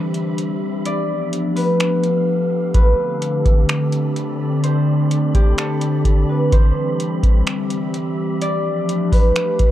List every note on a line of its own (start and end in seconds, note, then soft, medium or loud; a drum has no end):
0.00 0.84 E3 medium
0.00 0.84 G3 medium
0.00 0.81 C4 medium
0.00 0.82 C4 medium
0.00 0.81 D4 medium
0.00 0.14 G4 medium
0.00 6.48 G4 medium
0.00 0.22 A4 medium
0.00 0.94 C5 loud
0.00 0.84 E5 medium
0.00 0.84 B5 medium
0.15 closed hi-hat medium
0.38 closed hi-hat medium
0.85 2.73 F3 medium
0.85 6.49 A3 medium
0.85 2.72 B3 medium
0.85 2.73 B3 medium
0.85 2.73 D4 medium
0.85 6.48 G4 medium
0.85 6.48 A4 medium
0.85 2.71 D5 loud
0.85 2.72 F5 medium
0.85 closed hi-hat medium
1.33 closed hi-hat medium
1.56 2.74 B4 medium
1.56 open hi-hat soft
1.80 finger snap loud
1.80 closed hi-hat medium
2.04 closed hi-hat medium
2.74 6.49 D3 medium
2.74 8.37 C4 medium
2.74 8.38 C4 medium
2.74 6.49 D4 medium
2.74 4.69 B4 loud
2.74 6.49 D5 medium
2.74 9.71 B5 medium
2.74 kick loud
2.74 closed hi-hat medium
3.22 closed hi-hat medium
3.45 kick medium
3.45 closed hi-hat medium
3.69 finger snap loud
3.69 closed hi-hat medium
3.92 closed hi-hat medium
4.16 closed hi-hat medium
4.63 6.35 C5 medium
4.63 closed hi-hat medium
5.11 closed hi-hat medium
5.34 7.70 G4 medium
5.34 kick medium
5.34 closed hi-hat medium
5.58 7.78 A4 medium
5.58 finger snap loud
5.58 closed hi-hat medium
5.82 closed hi-hat medium
6.05 kick medium
6.05 closed hi-hat medium
6.29 6.58 B4 medium
6.52 8.40 E3 medium
6.52 8.40 G3 medium
6.52 9.71 G4 medium
6.52 8.50 C5 loud
6.52 8.39 E5 medium
6.52 kick loud
6.52 closed hi-hat medium
7.00 closed hi-hat medium
7.23 kick medium
7.23 closed hi-hat medium
7.47 finger snap loud
7.47 closed hi-hat medium
7.71 closed hi-hat medium
7.94 closed hi-hat medium
8.41 9.71 F3 medium
8.41 9.71 A3 medium
8.41 9.71 D4 medium
8.41 9.71 G4 medium
8.41 9.71 D5 loud
8.41 9.71 F5 medium
8.41 closed hi-hat medium
8.89 closed hi-hat medium
9.12 9.71 B4 medium
9.12 kick medium
9.12 open hi-hat soft
9.36 finger snap loud
9.36 closed hi-hat medium
9.59 kick medium
9.59 closed hi-hat medium